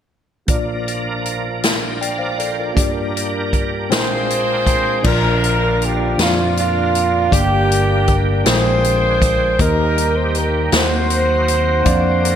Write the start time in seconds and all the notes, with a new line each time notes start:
0.47 A#1 A#2 F3 A#3 D4 F4 A#4 D5, kick, closed hi-hat
0.88 closed hi-hat
1.26 closed hi-hat
1.63 snare, closed hi-hat
1.81 G5
2.00 D5 F5 G5, closed hi-hat
2.18 C5 D5 F5
2.38 A4 C5 D5, closed hi-hat
2.58 F4 A#4 D5
2.74 G2 G3 A#3 D4 G4 A4 A#4 D5, kick, closed hi-hat
2.84 A#4
3.17 closed hi-hat
3.53 kick, closed hi-hat
3.89 A#1 A#2 G#3 C4 D4 F4 G#4 A#4 C5 G5, snare, closed hi-hat
3.94 C4
4.30 closed hi-hat
4.67 kick, closed hi-hat
5.03 A#1 A#2 D3 F3 A#3 D4 E4 F4 D5, kick, crash
5.07 F4 A#4
5.12 F4
5.44 closed hi-hat
5.82 G4, closed hi-hat
6.18 F2 A#3 D4 F4 C5, snare, closed hi-hat
6.25 D5
6.57 A#3 D4 F4, closed hi-hat
6.95 closed hi-hat
7.31 G1 G2 D3 G3 A#3 D4 G4 A#4 D5, kick, closed hi-hat
7.72 closed hi-hat
8.08 kick, closed hi-hat
8.44 A#1 A#2 C#3 G#3 C4 D4 F4 G#4 C5 G5, snare, closed hi-hat
8.54 D3
8.84 closed hi-hat
9.22 kick, closed hi-hat
9.58 D#2 D#3 G3 A#3 D#4 G4 A#4 D#5, kick, closed hi-hat
9.98 closed hi-hat
10.16 C5
10.35 A#4, closed hi-hat
10.72 D#2 D#3 F#3 A#3 C4 D#4 F#4 C5, snare, closed hi-hat
11.10 closed hi-hat
11.48 closed hi-hat
11.84 F2 D3 A#3 D4 A#4 D5 F5, kick, closed hi-hat
12.25 closed hi-hat